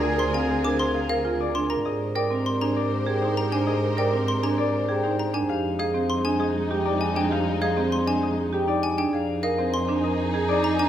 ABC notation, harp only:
X:1
M:6/4
L:1/8
Q:1/4=198
K:Ablyd
V:1 name="Harp"
[ABcdfa]2 f c2 B f2 A d2 B | e2 d B2 A d2 G c2 A | e2 d B2 A d2 G c2 A | f2 e c2 A e2 G d2 A |
f2 e c2 A e2 G d2 A | f2 e c2 B e2 A d2 B |]